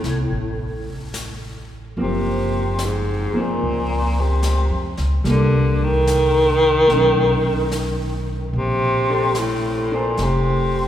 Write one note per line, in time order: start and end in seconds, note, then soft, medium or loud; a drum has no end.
0.00 0.29 C2 medium
0.00 1.18 A2 medium
0.00 1.95 A3 soft
0.00 1.97 B3 soft
0.00 1.98 F4 soft
0.00 snare soft
0.31 1.92 A1 medium
0.31 brush sweep soft
1.14 snare soft
1.14 hi-hat pedal soft
1.96 3.29 F#1 medium
1.96 3.32 F3 soft
1.96 3.33 A#3 soft
1.96 3.34 C4 soft
1.96 brush sweep soft
2.02 2.87 C3 medium
2.79 snare soft
2.79 hi-hat pedal soft
2.85 3.42 G#2 medium
3.33 5.24 F3 soft
3.33 5.25 A#3 soft
3.33 5.27 C4 soft
3.33 muted upright bass stroke soft
3.41 4.23 A#2 medium
3.60 4.66 C#2 medium
3.60 brush sweep soft
4.21 5.00 C3 medium
4.43 snare soft
4.43 hi-hat pedal soft
4.70 4.96 F2 medium
4.97 5.24 C#2 medium
4.97 snare soft
5.24 6.85 C2 medium
5.24 6.87 G3 soft
5.24 6.90 A#3 soft
5.24 brush sweep soft
5.24 snare soft
5.29 5.85 D3 medium
5.84 8.28 D#3 loud
6.07 snare soft
6.07 hi-hat pedal medium
6.88 8.50 B1 medium
6.88 8.53 A3 soft
6.88 brush sweep soft
6.88 snare soft
6.94 8.56 C#4 soft
6.99 8.58 D#4 soft
7.71 snare soft
7.71 hi-hat pedal soft
8.53 10.14 A#1 medium
8.53 brush sweep soft
8.58 9.41 C3 loud
9.10 9.91 D4 soft
9.10 9.92 A4 medium
9.10 9.93 C5 soft
9.35 snare soft
9.35 hi-hat pedal medium
9.40 9.97 A2 medium
9.92 10.25 A#2 medium
9.92 10.88 D4 soft
9.92 10.88 A4 soft
9.92 10.88 C5 soft
10.17 10.88 F1 medium
10.17 brush sweep soft
10.17 snare soft
10.23 10.88 C3 medium